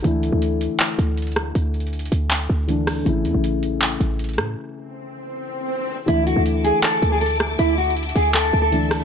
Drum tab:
HH |x-----------x-----------x-----------x-----------x-----------x-----------x--x--x--x--------------|x-----------x---x---x---x---x---x---x-----------x-----------------------x-----------o-----------|x-----------x-----------x-----------x-----------x-----------x-----------x--x--x--x--------------|------------------------------------------------------------------------------------------------|
CP |------------------------------------------------x-----------------------------------------------|------------------------------------------------x-----------------------------------------------|------------------------------------------------x-----------------------------------------------|------------------------------------------------------------------------------------------------|
SD |------------------------------------------------------------------------------------r-----------|------------------------------------------------------------------------------------r-----------|------------------------------------------------------------------------------------r-----------|------------------------------------------------------------------------------------------------|

HH |x-----------x-----------x-----------x-----------x-----------x-----------x--x--x--x--------------|x-----------x---x---x---x---x---x---x-----------x-----------------------x-----------o-----------|
CP |------------------------------------------------x-----------------------------------------------|------------------------------------------------x-----------------------------------------------|
SD |------------------------------------------------------------------------------------r-----------|------------------------------------------------------------------------------------r-----------|